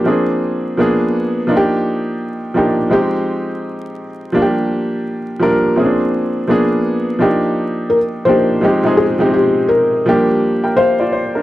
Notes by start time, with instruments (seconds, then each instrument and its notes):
0.04 upright piano F3 A#3 C4 D4 G#4
0.77 upright piano F3 A#3 B3 D4 G#4
1.47 upright piano F3 A#3 D4 D#4 F4
1.57 upright piano G4
2.54 upright piano F3 A#3 D4 D#4 G4
2.90 upright piano F3 G#3 C4 D#4 G4
4.32 upright piano F3 G3 A#3 D4 F4
4.42 upright piano G4
5.39 upright piano F3 G3 A#3 D4 A#4
5.76 upright piano F3 A#3 C4 C#4 G#4
5.85 upright piano D4
6.48 upright piano F3 A#3 B3 D4 G#4
7.19 upright piano F3 A#3 D4 D#4 G4
7.90 felt piano A#4
8.25 upright piano F3 A#3 D4 D#4, felt piano C5
8.29 upright piano G4
8.61 upright piano F3 G#3 C4 D#4 G4
8.83 upright piano F3 G#3 C4 D#4 G#4
8.97 felt piano G#4
9.18 upright piano F3 G#3 C4 D#4 G4
9.34 felt piano G4
9.69 felt piano A#4
10.06 upright piano F3 G3 A#3 D4 G4
10.64 upright piano A#4 G5
10.77 felt piano C5, upright piano F5
11.00 upright piano F4 D5
11.12 upright piano C5
11.35 upright piano D4 A#4